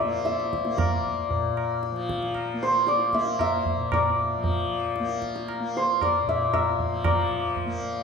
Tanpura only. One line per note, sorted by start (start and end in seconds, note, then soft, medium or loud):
0.00 1.28 A#2 soft
0.00 1.91 F3 medium
0.00 0.04 A#3 medium
0.04 0.65 A#3 medium
0.65 2.54 A#3 soft
1.29 3.76 A#2 medium
1.92 4.37 F3 medium
2.54 3.14 A#3 soft
3.14 5.00 A#3 medium
3.76 6.21 A#2 medium
4.37 6.83 F3 medium
5.00 5.60 A#3 medium
5.60 7.66 A#3 medium
6.22 8.03 A#2 medium
6.84 7.06 F3 soft
7.06 8.03 F3 medium
7.66 8.03 A#3 medium